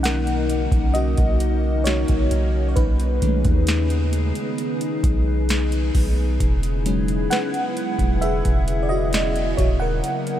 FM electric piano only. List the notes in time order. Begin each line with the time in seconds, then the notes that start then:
Already playing: D#3 A#3 C#4
0.03 A#4 F#5
0.94 F#4 D#5
1.84 F#4 C#5
2.68 C#5
2.76 D#4 B4
3.22 D#3 G#3 A3 C#4
6.86 F#3 G#3 C#4
7.30 B4 F#5
8.21 G#4 E5
8.83 D5
8.89 F#4 D#5
9.57 F#4 C#5
9.80 A#4 F#5